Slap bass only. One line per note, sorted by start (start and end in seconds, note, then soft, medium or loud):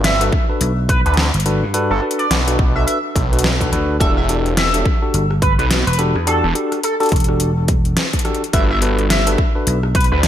0.61 1.03 B1 loud
1.34 1.60 G1 medium
1.63 1.88 G2 loud
3.72 3.99 D2 medium
5.14 5.56 G1 loud
5.87 6.13 E1 medium
6.15 6.41 E2 medium
7.12 7.95 E1 medium
9.67 10.09 B1 loud